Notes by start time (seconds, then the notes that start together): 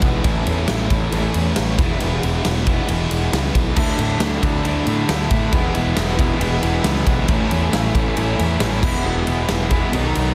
Already playing: E3 G#3 B3 E4
0.01 B1 G#3 B3 E4, kick, ride
0.23 A1 A2 E3 A3 C#4 E4, kick, ride
0.45 E2 A3 C#4 E4, ride
0.67 A1 E3 A3 C#4 E4, snare, ride
0.90 A1 A3 C#4 E4, kick, ride
1.12 A1 A2 E3 A3 C#4 E4, ride
1.34 E2, ride
1.56 A1 E3 A3 C#4 E4, snare, ride
1.78 E1 E3 G#3 B3 E4, kick, ride
1.99 E1 E3 G#3 B3 E4, ride
2.22 E1 G#3 B3 E4, ride
2.43 E1 E3 G#3 B3 E4, snare, ride
2.57 snare
2.66 E3 G#3 B3 E4, kick, ride
2.88 E1 E3 G#3 B3 E4, ride
3.11 E1, ride
3.33 C#2 E3 G#3 B3 E4, snare, ride
3.44 snare
3.54 B1 G#3 B3 E4, kick, ride
3.76 D2 D3 A3 D4 E4, kick, crash
3.98 A2 A3 D4 E4, ride
4.20 D2 D3 A3 D4 E4, snare, ride
4.32 snare
4.43 D2 A3 D4 E4, kick, ride
4.64 D2 D3 A3 D4 E4, ride
4.87 A2 A3 D4 E4, ride
5.09 D2 D3 A3 D4 E4, snare, ride
5.30 A2 A3 D4 E4, kick, ride
5.52 E1 E3 G#3 B3 E4, kick, ride
5.75 E1 G#3 B3 E4, ride
5.96 E1 E3 G#3 B3 E4, snare, ride
6.08 snare
6.18 G#3 B3 E4, kick, ride
6.40 E1 E3 G#3 B3 E4, ride
6.62 E1 G#3 B3 E4, ride
6.84 C#2 E3 G#3 B3 E4, snare, ride
6.95 snare
7.07 B1 G#3 B3 E4, kick, ride
7.28 A1 A2 E3 A3 C#4 E4, kick, ride
7.50 E2 A3 C#4 E4, ride
7.73 A1 E3 A3 C#4 E4, snare, ride
7.94 A1 A3 C#4 E4, kick, ride
8.16 A1 A2 E3 A3 C#4 E4, ride
8.39 E2 A3 C#4 E4, ride
8.60 A1 E3 A3 C#4 E4, snare, ride
8.72 snare
8.81 E1 E3 G#3 B3 E4, kick, crash
9.03 E1 E3 G#3 B3 E4
9.25 E1 G#3 B3 E4, ride
9.48 E1 E3 G#3 B3 E4, snare, ride
9.71 E3 G#3 B3 E4, kick, ride
9.93 B1 B2 D#3 F#3 B3 D#4, ride
10.15 B1 F#3 B3 D#4, ride